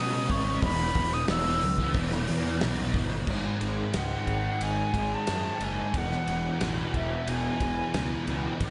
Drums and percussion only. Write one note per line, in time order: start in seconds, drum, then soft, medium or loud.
0.29 kick medium
0.29 open hi-hat medium
0.62 kick loud
0.62 open hi-hat medium
0.95 kick medium
0.95 open hi-hat medium
1.12 snare soft
1.28 snare loud
1.28 open hi-hat medium
1.61 open hi-hat medium
1.78 kick medium
1.94 kick loud
1.94 open hi-hat medium
2.11 snare soft
2.27 open hi-hat medium
2.61 snare loud
2.61 open hi-hat medium
2.94 kick loud
2.94 open hi-hat medium
3.27 kick loud
3.27 crash loud
3.61 ride medium
3.94 snare loud
3.94 ride medium
4.27 kick medium
4.27 ride medium
4.61 ride medium
4.94 kick medium
4.94 ride medium
5.27 snare loud
5.27 ride medium
5.61 ride medium
5.94 kick loud
5.94 ride medium
6.12 snare soft
6.28 ride medium
6.61 snare loud
6.61 ride medium
6.94 kick medium
6.94 ride medium
7.28 ride medium
7.60 kick medium
7.60 ride medium
7.94 snare loud
7.94 ride medium
8.27 ride medium
8.61 kick loud
8.61 ride medium